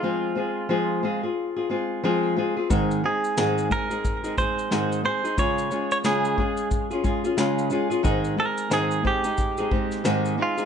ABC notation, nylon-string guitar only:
X:1
M:4/4
L:1/16
Q:"Swing 16ths" 1/4=90
K:Ab
V:1 name="Nylon-string guitar"
[F,A,CFA]2 [A,CFA]2 [F,A,CFA]2 [A,CFA] [CFA]2 [CFA] [A,CFA]2 [F,A,CFA]2 [A,CFA] [CFA] | [A,,E,A,CEA]2 [A,CEA]2 [A,,E,A,CEA]2 [A,CEA] [A,CEA]2 [A,CEA] [A,CEA]2 [A,,E,A,CEA]2 [A,CEA] [A,CEA] | [D,A,DFA]2 [A,DFA]2 [D,A,DFA]2 [A,DFA]3 [DFA] [A,DFA] [DFA] [D,A,DFA]2 [A,DFA] [DFA] | [A,,E,A,CEA]2 [A,CEA]2 [A,,E,A,CEA]2 [A,CEA] [A,CE]2 [A,CEA] [A,CE]2 [A,,E,A,CE]2 [A,CEA] [A,CEA] |]